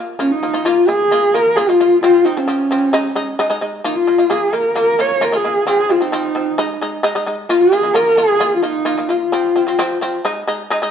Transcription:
0.00 0.14 A#3 medium
0.00 0.15 F4 medium
0.19 0.37 A#3 medium
0.19 0.32 C#4 medium
0.19 0.37 F4 loud
0.31 0.66 D#4 medium
0.43 0.51 A#3 medium
0.43 0.52 F4 medium
0.54 0.62 A#3 medium
0.54 0.63 F4 medium
0.64 0.83 A#3 loud
0.64 0.89 F4 loud
0.64 0.83 F4 loud
0.87 1.06 A#3 medium
0.87 1.06 F4 medium
0.87 1.35 G#4 loud
1.11 1.29 A#3 medium
1.11 1.29 F4 loud
1.34 1.52 A#3 medium
1.34 1.52 F4 medium
1.34 1.57 A#4 loud
1.56 1.65 A#3 loud
1.56 1.66 F4 loud
1.56 1.71 G#4 loud
1.69 1.77 A#3 medium
1.69 2.01 F4 loud
1.69 1.77 F4 medium
1.80 1.98 A#3 medium
1.80 1.98 F4 medium
2.01 2.20 F3 medium
2.01 2.21 C4 loud
2.01 2.26 F4 loud
2.25 2.34 F3 medium
2.25 2.34 C4 medium
2.25 2.39 D#4 medium
2.37 2.45 F3 medium
2.37 2.46 C4 medium
2.37 3.28 C#4 medium
2.48 2.66 F3 medium
2.48 2.66 C4 medium
2.71 2.88 F3 medium
2.71 2.89 C4 medium
2.93 3.11 G#3 loud
2.93 3.11 D#4 loud
3.15 3.34 G#3 medium
3.15 3.34 D#4 loud
3.39 3.48 G#3 loud
3.39 3.48 D#4 loud
3.50 3.59 G#3 medium
3.50 3.59 D#4 loud
3.61 3.79 G#3 medium
3.61 3.80 D#4 loud
3.84 4.02 A#3 medium
3.84 3.97 D#4 medium
3.84 4.03 F4 loud
3.96 4.31 F4 loud
4.07 4.16 A#3 medium
4.07 4.16 F4 medium
4.18 4.27 A#3 medium
4.18 4.28 F4 medium
4.30 4.48 A#3 medium
4.30 4.48 F4 medium
4.30 4.55 G#4 medium
4.53 4.71 A#3 medium
4.53 4.71 F4 medium
4.53 4.76 A#4 medium
4.75 4.94 A#3 medium
4.75 4.94 F4 loud
4.75 5.01 A#4 loud
4.99 5.17 A#3 medium
4.99 5.17 F4 medium
4.99 5.25 C#5 loud
5.21 5.30 A#3 medium
5.21 5.30 F4 loud
5.21 5.37 A#4 loud
5.32 5.41 A#3 medium
5.32 5.42 F4 medium
5.32 5.68 G#4 loud
5.45 5.62 A#3 medium
5.45 5.63 F4 medium
5.67 5.85 F3 loud
5.67 5.85 C4 loud
5.67 5.93 G#4 loud
5.89 5.98 F3 medium
5.89 5.99 C4 medium
5.89 6.03 F4 medium
6.01 6.10 F3 medium
6.01 6.10 C4 medium
6.01 6.93 D#4 medium
6.12 6.30 F3 medium
6.12 6.31 C4 loud
6.35 6.53 F3 medium
6.35 6.54 C4 medium
6.58 6.76 G#3 loud
6.58 6.77 D#4 loud
6.81 6.99 G#3 medium
6.81 7.00 D#4 loud
7.03 7.13 G#3 loud
7.03 7.13 D#4 loud
7.15 7.24 G#3 medium
7.15 7.24 D#4 medium
7.26 7.45 G#3 medium
7.26 7.45 D#4 medium
7.49 7.68 A#3 medium
7.49 7.62 F4 medium
7.49 7.68 F4 loud
7.61 7.95 G#4 loud
7.72 7.81 A#3 medium
7.72 7.82 F4 medium
7.83 7.93 A#3 medium
7.83 7.93 F4 medium
7.93 8.13 A#3 loud
7.93 8.13 F4 loud
7.93 8.17 A#4 loud
8.16 8.36 A#3 medium
8.16 8.36 F4 medium
8.16 8.55 G#4 loud
8.40 8.59 A#3 medium
8.40 8.59 F4 loud
8.55 8.63 F4 medium
8.61 8.81 A#3 medium
8.61 9.10 D#4 loud
8.61 8.82 F4 medium
8.85 8.95 A#3 loud
8.85 8.95 F4 loud
8.98 9.07 A#3 medium
8.98 9.07 F4 medium
9.08 9.28 A#3 medium
9.08 9.19 F4 medium
9.08 9.28 F4 medium
9.20 10.08 F4 medium
9.32 9.51 F3 loud
9.32 9.51 C4 loud
9.56 9.65 F3 medium
9.56 9.65 C4 medium
9.67 9.76 F3 medium
9.67 9.76 C4 medium
9.79 9.97 F3 loud
9.79 9.97 C4 loud
10.01 10.20 F3 medium
10.01 10.20 C4 loud
10.25 10.43 G#3 loud
10.25 10.43 D#4 loud
10.47 10.66 G#3 medium
10.47 10.66 D#4 medium
10.70 10.79 G#3 loud
10.70 10.80 D#4 loud
10.82 10.91 G#3 medium
10.82 10.91 D#4 loud

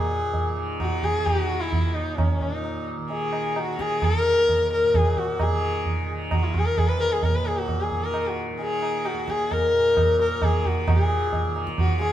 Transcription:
0.00 1.72 D#2 soft
0.00 2.35 A#2 medium
0.00 0.49 D#3 medium
0.00 0.57 G#4 medium
0.34 tabla tin medium
0.34 tabla ge medium
0.49 1.10 D#3 medium
0.57 tabla na medium
0.80 1.05 F#4 medium
0.80 tabla na medium
0.80 tabla ge medium
1.03 1.28 G#4 medium
1.03 tabla ge soft
1.10 2.98 D#3 soft
1.26 1.62 F#4 medium
1.26 tabla na medium
1.26 tabla ge medium
1.60 1.96 E4 medium
1.72 4.22 D#2 medium
1.72 tabla tin medium
1.72 tabla ge medium
1.95 2.19 D#4 medium
2.17 2.43 C#4 medium
2.17 tabla na medium
2.17 tabla ge medium
2.35 4.83 A#2 soft
2.41 2.87 D#4 medium
2.41 tabla ge soft
2.64 tabla na medium
2.98 3.60 D#3 medium
3.10 3.59 G#4 medium
3.10 tabla tin medium
3.33 tabla na medium
3.56 5.45 D#3 soft
3.56 3.82 F#4 medium
3.56 tabla na medium
3.79 4.06 G#4 medium
3.79 tabla ke medium
4.02 4.72 A#4 loud
4.02 tabla na medium
4.02 tabla ge medium
4.23 6.67 D#2 soft
4.48 tabla tin medium
4.48 tabla ge medium
4.73 4.97 A#4 medium
4.83 7.28 A#2 medium
4.94 5.20 G#4 medium
4.94 tabla na medium
4.94 tabla ge medium
5.17 5.43 F#4 medium
5.17 tabla ge soft
5.40 6.10 G#4 medium
5.40 tabla na medium
5.40 tabla ge medium
5.45 6.06 D#3 medium
5.85 tabla tin medium
5.85 tabla ge medium
6.06 7.91 D#3 medium
6.31 6.45 F#4 medium
6.31 tabla na medium
6.31 tabla ge medium
6.43 6.56 E4 medium
6.54 6.67 G#4 medium
6.54 tabla ge soft
6.66 9.13 D#2 medium
6.66 6.79 A#4 medium
6.78 6.90 G#4 medium
6.78 tabla na medium
6.78 tabla ge medium
6.88 6.97 B4 medium
6.97 7.14 A#4 medium
6.97 7.01 B4 medium
7.12 7.25 G#4 medium
7.23 7.37 A#4 medium
7.23 tabla tin medium
7.23 tabla ge medium
7.29 9.72 A#2 medium
7.35 7.48 B4 medium
7.46 7.59 G#4 medium
7.46 tabla na medium
7.58 7.82 F#4 medium
7.68 tabla na medium
7.68 tabla ge medium
7.81 8.05 G#4 medium
7.91 8.50 D#3 medium
7.91 tabla ge medium
8.04 8.29 A#4 medium
8.14 tabla na medium
8.27 8.38 F#4 medium
8.50 10.35 D#3 medium
8.60 9.07 G#4 medium
8.60 tabla tin medium
8.82 tabla na medium
9.05 9.32 F#4 medium
9.05 tabla na medium
9.13 12.12 D#2 medium
9.28 9.54 G#4 medium
9.28 tabla ke medium
9.51 10.20 A#4 loud
9.51 tabla na medium
9.51 tabla ge medium
9.73 10.87 A#2 medium
9.97 tabla na medium
9.97 tabla ge medium
10.19 10.45 A#4 medium
10.19 tabla te medium
10.35 11.48 D#3 medium
10.42 10.68 G#4 medium
10.42 tabla na medium
10.42 tabla ge medium
10.65 10.90 F#4 medium
10.65 tabla ge medium
10.87 12.12 A#2 medium
10.87 11.03 G4 medium
10.87 tabla na medium
10.87 tabla ge medium
11.03 11.56 G#4 medium
11.33 tabla tin medium
11.33 tabla ge medium
11.48 12.09 D#3 medium
11.56 tabla na medium
11.67 tabla ke medium
11.78 12.00 F#4 medium
11.78 tabla na medium
11.78 tabla ge medium
12.01 12.12 G#4 medium
12.01 tabla te medium
12.09 12.12 D#3 medium

